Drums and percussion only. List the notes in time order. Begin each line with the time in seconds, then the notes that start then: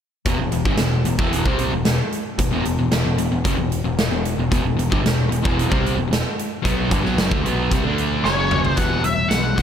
0.25 kick, closed hi-hat
0.52 closed hi-hat
0.65 kick
0.77 snare, closed hi-hat
1.05 closed hi-hat
1.19 kick
1.33 closed hi-hat
1.46 kick
1.58 closed hi-hat
1.85 snare, closed hi-hat
2.12 closed hi-hat
2.39 kick, closed hi-hat
2.65 closed hi-hat
2.91 snare, closed hi-hat
3.18 closed hi-hat
3.45 kick, closed hi-hat
3.72 closed hi-hat
3.98 snare, closed hi-hat
4.25 closed hi-hat
4.52 kick, closed hi-hat
4.79 closed hi-hat
4.92 kick
5.06 snare, closed hi-hat
5.32 closed hi-hat
5.45 kick
5.59 closed hi-hat
5.72 kick
5.86 closed hi-hat
6.13 snare, closed hi-hat
6.39 closed hi-hat
6.65 kick, closed hi-hat
6.91 kick, closed hi-hat
7.05 snare
7.18 snare, closed hi-hat
7.31 kick
7.46 closed hi-hat
7.72 kick, closed hi-hat
7.98 closed hi-hat
8.25 snare
8.51 mid tom
8.65 floor tom
8.77 kick, closed hi-hat
9.04 closed hi-hat
9.31 snare, closed hi-hat
9.58 kick, closed hi-hat